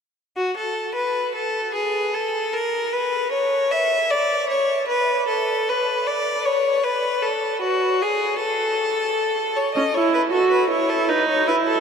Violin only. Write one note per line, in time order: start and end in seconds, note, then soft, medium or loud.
0.37 0.55 F#4 medium
0.57 0.94 A4 medium
0.95 1.34 B4 medium
1.35 1.74 A4 medium
1.75 2.16 G#4 medium
2.14 2.55 A4 medium
2.54 2.94 A#4 medium
2.93 3.32 B4 medium
3.32 3.73 C#5 medium
3.71 4.12 E5 medium
4.10 4.49 D5 medium
4.50 4.88 C#5 medium
4.89 5.27 B4 medium
5.29 5.70 A4 medium
5.69 6.08 B4 medium
6.07 6.47 D5 medium
6.45 6.85 C#5 medium
6.84 7.24 B4 medium
7.22 7.61 A4 medium
7.62 8.04 F#4 medium
8.02 8.40 G#4 medium
8.41 9.58 A4 medium
9.57 9.74 C#5 medium
9.75 9.96 D#5 soft
9.94 10.13 C#5 medium
10.14 10.21 B4 medium
10.32 10.50 A4 medium
10.51 10.69 B4 soft
10.70 10.91 C#5 medium
10.89 11.11 A4 medium
11.09 11.28 B4 medium
11.28 11.47 C#5 medium
11.48 11.56 B4 medium
11.67 11.80 A4 medium